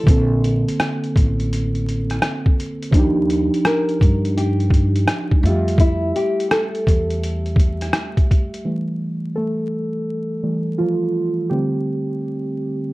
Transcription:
Already playing: A4
0.03 A#1 D3 A#3, kick
0.08 C4 A4, closed hi-hat
0.44 closed hi-hat
0.69 closed hi-hat
0.80 cross-stick, closed hi-hat
1.04 closed hi-hat
1.16 A1, kick, closed hi-hat
1.40 closed hi-hat
1.53 closed hi-hat
1.75 closed hi-hat
1.89 closed hi-hat
2.10 cross-stick, closed hi-hat
2.22 cross-stick, closed hi-hat
2.46 kick
2.60 closed hi-hat
2.82 closed hi-hat
2.91 D#2 F3 D4, kick, closed hi-hat
2.96 D#4 G4
3.30 closed hi-hat
3.54 closed hi-hat
3.65 A#4, cross-stick, closed hi-hat
3.89 closed hi-hat
4.01 G2, kick, closed hi-hat
4.25 closed hi-hat
4.37 G4, closed hi-hat
4.60 closed hi-hat
4.70 kick, closed hi-hat
4.96 closed hi-hat
5.08 cross-stick, closed hi-hat
5.31 kick
5.41 F2 G3 A3 F4
5.46 G4 E5, closed hi-hat
5.68 closed hi-hat
5.78 E4, kick, closed hi-hat
6.16 G4, closed hi-hat
6.40 closed hi-hat
6.51 A4, cross-stick, closed hi-hat
6.75 closed hi-hat
6.87 E2, kick, closed hi-hat
7.10 closed hi-hat
7.23 closed hi-hat
7.46 closed hi-hat
7.56 kick, closed hi-hat
7.81 cross-stick, closed hi-hat
7.93 cross-stick, closed hi-hat
8.17 kick, closed hi-hat
8.31 kick, closed hi-hat
8.54 closed hi-hat
8.65 E3 G3 A3
9.36 A3 A4
10.43 E3 G3 A3
10.78 F3 F4
11.50 D3 G3 A3 C4 G4

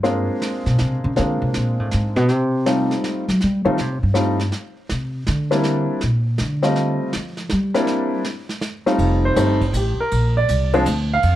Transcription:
Already playing: G2
0.03 G#3 A#3 C4 D4 F4, brush sweep, snare
0.42 snare
0.66 B2, snare
0.79 C3, snare
1.04 C#3
1.16 D3 G#3 A#3 C4 D4 F4, brush sweep, snare
1.42 C3
1.54 A#2, snare
1.80 A2
1.91 G#2, snare
2.16 B2, snare
2.29 C3, brush sweep, snare
2.66 G3 A3 C4 D#4 F4, snare
2.91 snare
3.04 snare
3.28 F#3, snare
3.41 G3, brush sweep, snare
3.65 D#3 G3 A3 C4 D#4 F4
3.78 C3, snare
4.03 G2
4.14 G3 A3 C4 D#4 F4, snare
4.39 snare
4.52 brush sweep, snare
4.89 C3, snare
5.27 D3, snare
5.51 G3 A#3 C4 D4 E4, snare
5.64 brush sweep, snare
6.01 A#2, snare
6.38 D3, snare
6.62 G3 A3 C4 F4 D#5, snare
6.76 brush sweep, snare
7.13 F3, snare
7.37 snare
7.50 G3, snare
7.74 G3 A#3 C4 D4 E4, snare
7.87 brush sweep, snare
8.25 snare
8.49 snare
8.61 snare
8.86 G3 A3 C4 D#4 F4, snare
8.98 F1, ride
9.25 C5
9.36 G1 G3 A3 C4 D#4, hi-hat pedal, ride
9.61 kick, ride
9.73 A1 G4, hi-hat pedal, ride
9.98 A#4, muted upright bass stroke
10.11 A#1, ride
10.37 D5
10.48 C2, hi-hat pedal, ride
10.73 F3 G#3 C4 D4, ride
10.86 D2, hi-hat pedal, ride
11.13 F5
11.23 F2, ride

